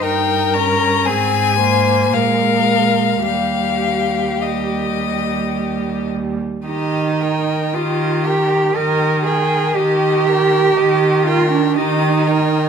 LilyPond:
<<
  \new Staff \with { instrumentName = "Violin" } { \time 3/4 \key ees \major \tempo 4 = 57 g''8 bes''8 aes''4 f''4 | f''4 ees''4. r8 | ees''8 g''8 ees''8 g''8 ees''8 g''8 | ees''8 g''8 ees''8 g''8 ees''8 g''8 | }
  \new Staff \with { instrumentName = "Violin" } { \time 3/4 \key ees \major bes'4 aes'8 c''8 bes'4 | g'2~ g'8 r8 | g'8 bes'8 g'8 bes'8 g'8 bes'8 | g'8 bes'8 g'8 bes'8 g'8 bes'8 | }
  \new Staff \with { instrumentName = "Cello" } { \time 3/4 \key ees \major g,4 aes,4 bes,4 | ees,2. | ees'4 f'8 g'8 bes'8 aes'8 | g'4. f'16 d'16 ees'4 | }
  \new Staff \with { instrumentName = "Viola" } { \clef bass \time 3/4 \key ees \major ees'8 des'8 c'8 bes8 aes4 | g4 g2 | ees4 ees4 ees4 | ees4 ees4 ees4 | }
>>